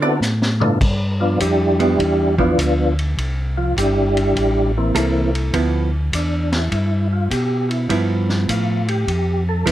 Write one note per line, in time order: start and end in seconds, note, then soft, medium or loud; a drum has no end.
0.00 0.20 D3 medium
0.00 0.20 B3 medium
0.00 0.20 C4 medium
0.00 0.20 E4 medium
0.00 0.20 F#4 medium
0.00 0.20 A4 medium
0.00 0.14 D5 loud
0.20 0.78 A2 medium
0.20 snare soft
0.20 hi-hat pedal medium
0.42 snare medium
0.60 0.78 G2 medium
0.60 0.79 B3 medium
0.60 0.79 D4 medium
0.60 0.79 E4 medium
0.60 0.79 F4 medium
0.60 0.79 A4 medium
0.60 mid tom medium
0.80 1.38 G2 medium
0.80 kick medium
0.80 crash medium
1.20 1.40 F3 medium
1.20 1.40 B3 medium
1.20 1.40 D4 medium
1.20 1.40 F4 medium
1.40 1.97 F2 medium
1.40 2.35 G3 medium
1.40 2.35 D4 medium
1.40 2.35 E4 medium
1.40 2.35 G4 medium
1.40 kick soft
1.40 hi-hat pedal medium
1.40 ride medium
1.80 1.97 F3 medium
1.80 1.97 B3 medium
1.80 1.98 E4 medium
1.80 ride soft
1.99 2.56 E2 medium
1.99 kick soft
1.99 ride medium
2.38 2.56 F3 medium
2.38 2.94 F3 medium
2.38 2.56 B3 medium
2.38 2.95 B3 medium
2.38 2.94 D4 medium
2.38 2.57 E4 medium
2.38 2.94 F4 medium
2.38 kick soft
2.58 3.15 D2 medium
2.58 kick soft
2.58 hi-hat pedal medium
2.58 ride medium
2.99 ride soft
3.17 3.74 C2 medium
3.17 kick soft
3.17 ride medium
3.57 3.76 F3 medium
3.57 3.76 F4 medium
3.76 4.34 G1 medium
3.76 4.72 G3 medium
3.76 4.72 D4 medium
3.76 4.72 E4 medium
3.76 4.72 G4 medium
3.76 kick soft
3.76 hi-hat pedal medium
3.76 ride medium
4.17 ride soft
4.35 4.93 A1 medium
4.35 kick soft
4.35 ride medium
4.77 5.31 E3 medium
4.77 5.31 A#3 medium
4.77 5.31 C4 medium
4.77 5.31 E4 medium
4.94 5.52 C2 medium
4.94 5.53 A#3 medium
4.94 5.53 E4 medium
4.94 5.54 A4 medium
4.94 kick soft
4.94 hi-hat pedal medium
4.94 ride medium
5.35 ride soft
5.53 6.11 D2 medium
5.53 5.89 F3 medium
5.53 5.89 B3 medium
5.53 5.89 E4 medium
5.53 kick soft
5.53 ride medium
6.12 6.70 E2 medium
6.12 6.52 D4 medium
6.12 kick soft
6.12 hi-hat pedal medium
6.12 ride medium
6.52 7.08 E4 medium
6.52 snare medium
6.52 ride soft
6.71 7.29 G2 medium
6.71 kick soft
6.71 ride medium
7.13 7.31 F4 medium
7.30 7.88 B2 medium
7.30 7.69 G4 medium
7.30 kick soft
7.30 hi-hat pedal medium
7.30 ride medium
7.69 7.89 E4 medium
7.69 ride soft
7.89 8.47 G2 medium
7.89 8.80 F3 medium
7.89 8.81 B3 medium
7.89 8.81 E4 medium
7.89 kick soft
7.89 ride medium
8.29 snare soft
8.48 9.06 A2 medium
8.48 8.88 F4 medium
8.48 kick soft
8.48 hi-hat pedal medium
8.48 ride medium
8.88 9.44 G4 medium
8.88 ride soft
9.07 9.65 F2 medium
9.07 kick soft
9.07 ride medium
9.49 9.67 A4 medium
9.66 9.72 E2 medium
9.66 9.72 F3 medium
9.66 9.72 B3 medium
9.66 9.72 E4 medium
9.66 kick soft
9.66 hi-hat pedal medium
9.66 ride medium